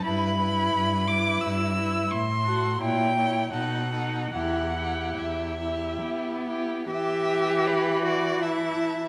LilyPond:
<<
  \new Staff \with { instrumentName = "Violin" } { \time 3/4 \key e \minor \tempo 4 = 80 b''4. d'''8 e'''4 | c'''4 g''4 fis''4 | fis''4 e''4. r8 | g''4 b''4 a''4 | }
  \new Staff \with { instrumentName = "Violin" } { \time 3/4 \key e \minor b'8 b'4 b'4 b'8 | r8 a'8 cis''8 cis''8 a'8 a'8 | g'8 g'4 g'4 g'8 | e''4 b'8 d''8 e''4 | }
  \new Staff \with { instrumentName = "Viola" } { \time 3/4 \key e \minor e'8 e'4 e'4 e'8 | r8 fis'8 e'8 e'8 dis'8 dis'8 | e'8 e'4 e'4 e'8 | e2. | }
  \new Staff \with { instrumentName = "Cello" } { \clef bass \time 3/4 \key e \minor g,4 g,4 g,4 | a,4 ais,4 b,4 | e,4 e,4 b4 | g'4. fis'8 e'4 | }
>>